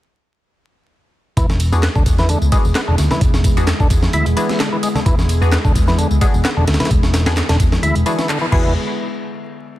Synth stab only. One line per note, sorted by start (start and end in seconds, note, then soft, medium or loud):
1.72 1.83 B3 medium
1.72 1.83 D4 medium
1.72 1.83 F#4 medium
1.72 1.83 G#4 medium
2.52 2.64 B3 medium
2.52 2.64 D4 medium
2.52 2.64 F#4 medium
2.52 2.64 G#4 medium
3.57 3.67 B3 medium
3.57 3.67 D4 medium
3.57 3.67 F#4 medium
3.57 3.67 G#4 medium
4.37 4.49 B3 medium
4.37 4.49 D4 medium
4.37 4.49 F#4 medium
4.37 4.49 G#4 medium
5.42 5.52 B3 medium
5.42 5.52 D4 medium
5.42 5.52 F#4 medium
5.42 5.52 G#4 medium
6.21 6.34 B3 medium
6.21 6.34 D4 medium
6.21 6.34 F#4 medium
6.21 6.34 G#4 medium
7.26 7.36 B3 medium
7.26 7.37 D4 medium
7.26 7.36 F#4 medium
7.26 7.37 G#4 medium
8.06 8.18 B3 medium
8.06 8.18 D4 medium
8.06 8.18 F#4 medium
8.06 8.18 G#4 medium
8.52 8.70 B3 medium
8.52 8.70 D4 medium
8.52 8.70 F#4 medium
8.52 8.70 G#4 loud